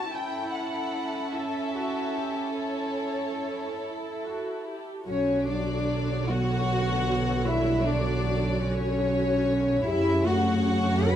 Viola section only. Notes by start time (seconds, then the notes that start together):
0.12 C#4
3.83 E4
4.25 F#4
4.67 G4
5.07 D3 F#4
9.87 C#3 C#4